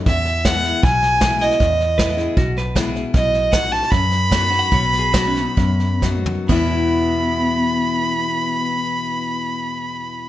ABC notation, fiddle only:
X:1
M:4/4
L:1/8
Q:1/4=146
K:E
V:1 name="Fiddle"
e2 f2 g3 d- | d3 z4 z | d2 f a b4- | b6 z2 |
b8- | b8 |]